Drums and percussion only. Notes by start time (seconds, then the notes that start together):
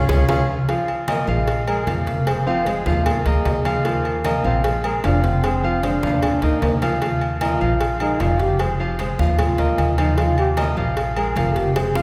0.09 high bongo, high conga, high timbale
0.29 high bongo, high conga, high timbale
0.69 cowbell, low agogo
0.88 high conga, low agogo
1.08 cowbell, high conga, low agogo
1.28 high conga
1.47 cowbell, high conga, low agogo
1.67 high conga, low agogo
1.87 cowbell, high conga, low agogo
2.07 cowbell, high conga
2.27 cowbell, high conga, low agogo
2.47 high conga
2.66 cowbell, high conga, low agogo
2.86 high conga
3.06 cowbell, high conga, low conga, low agogo
3.26 cowbell, high conga
3.45 cowbell, high conga, low timbale, low agogo
3.65 cowbell, high conga, low agogo
3.85 cowbell, low agogo
4.05 high conga, low agogo
4.25 cowbell, high conga, low agogo
4.45 high conga
4.64 cowbell, low agogo
4.84 low agogo
5.04 cowbell, high conga, low timbale, low agogo
5.24 cowbell, high conga
5.43 cowbell, high conga, low agogo
5.63 high conga
5.83 cowbell, high conga, low agogo
6.03 high conga
6.23 cowbell, high conga, low conga, low agogo
6.42 cowbell, high conga
6.62 cowbell, high conga, low timbale, low agogo
6.82 cowbell, high conga, low agogo
7.01 cowbell, high conga, low agogo
7.21 high conga, low agogo
7.41 cowbell, high conga, low agogo
7.61 high conga
7.80 cowbell, high conga, low agogo
8.00 high conga, low agogo
8.20 cowbell, high conga, low timbale, low agogo
8.39 cowbell, high conga
8.59 cowbell, low agogo
8.80 high conga
8.99 cowbell, high conga, low agogo
9.19 high conga
9.39 cowbell, high conga, low conga, low agogo
9.58 cowbell, high conga
9.78 cowbell, high conga, low agogo
9.98 cowbell, high conga, low agogo
10.18 cowbell, high conga, low agogo
10.38 high conga, low agogo
10.57 cowbell, high conga, low agogo
10.77 high conga
10.97 cowbell, high conga, low agogo
11.16 high conga, low agogo
11.36 cowbell, high conga, low agogo
11.56 cowbell, high conga
11.76 cowbell, high bongo, low agogo
11.95 high bongo, high conga